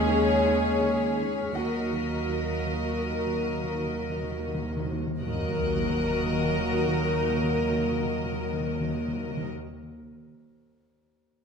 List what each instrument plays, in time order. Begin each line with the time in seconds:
Already playing: double bass section D#2, cello section D#2, trombone section C#3 G#3, french horn section C#4 G#4, viola section C#4, violin section G#4 C#5 C#6 F6 B6
0.08 cello section D#3
0.45 cello section D#4
0.81 cello section D#3
1.17 cello section D#3
1.53 double bass section D#2, cello section D#2 D#3, timpani D#3, trombone section D#3 F#3, french horn section A#3 A#4, viola section F#4, grand piano F#4 F#5, violin section A#4 D#5
1.63 timpani D#3
1.85 timpani D#3
1.91 cello section D#3, timpani D#3
2.00 timpani D#3
2.16 timpani D#3
2.23 timpani D#3
2.27 cello section D#3
2.38 timpani D#3
2.45 timpani D#3
2.52 timpani D#3
2.59 timpani D#3
2.64 cello section D#3, timpani D#3
2.74 timpani D#3
2.81 timpani D#3
2.89 timpani D#3
2.96 timpani D#3, cello section D#3
3.04 timpani D#3
3.11 timpani D#3
3.19 timpani D#3
3.27 timpani D#3
3.34 timpani D#3, cello section D#3
3.42 timpani D#3
3.49 timpani D#3
3.57 timpani D#3
3.64 timpani D#3
3.71 timpani D#3, cello section D#3
3.79 timpani D#3
3.87 timpani D#3
3.94 timpani D#3
4.01 timpani D#3
4.09 timpani D#3, cello section D#4
4.17 timpani D#3
4.23 timpani D#3
4.31 timpani D#3
4.39 timpani D#3
4.47 cello section D#3, timpani D#3
4.54 timpani D#3
4.62 timpani D#3
4.70 timpani D#3
4.77 timpani D#3
4.84 cello section D#3, timpani D#3
4.92 timpani D#3
4.99 timpani D#3
5.07 timpani D#3
5.19 double bass section D#2, cello section D#2, timpani D#3, trombone section D#3 F#3, french horn section A#3 A#4, viola section F#4, violin section A#4 D#5 D#6 F#6, sub drop
5.27 timpani D#3
5.34 timpani D#3
5.41 timpani D#3
5.49 timpani D#3
5.56 timpani D#3
5.62 timpani D#3
5.69 timpani D#3
5.76 timpani D#3
5.82 timpani D#3
5.90 timpani D#3
5.97 timpani D#3
6.04 timpani D#3
6.10 timpani D#3
6.17 timpani D#3
6.24 timpani D#3
6.31 timpani D#3
6.38 timpani D#3
6.45 timpani D#3
6.51 timpani D#3
6.59 timpani D#3
6.66 timpani D#3
6.73 timpani D#3
6.80 timpani D#3
6.87 timpani D#3
6.94 timpani D#3
7.02 timpani D#3
7.09 timpani D#3, violin section G6
7.16 timpani D#3
7.23 timpani D#3
7.30 timpani D#3
7.37 timpani D#3
7.44 timpani D#3
7.51 timpani D#3
7.58 timpani D#3
7.64 timpani D#3
7.71 timpani D#3
7.78 timpani D#3
7.85 timpani D#3
7.91 timpani D#3
7.98 timpani D#3
8.05 timpani D#3
8.12 timpani D#3
8.19 timpani D#3
8.25 timpani D#3
8.32 timpani D#3
8.39 timpani D#3
8.46 timpani D#3
8.53 timpani D#3
8.60 timpani D#3
8.67 timpani D#3
8.74 timpani D#3
8.81 timpani D#3
8.88 timpani D#3
8.94 timpani D#3
9.01 timpani D#3
9.08 timpani D#3
9.16 timpani D#3
9.23 timpani D#3
9.30 timpani D#3
9.37 timpani D#3
9.44 timpani D#3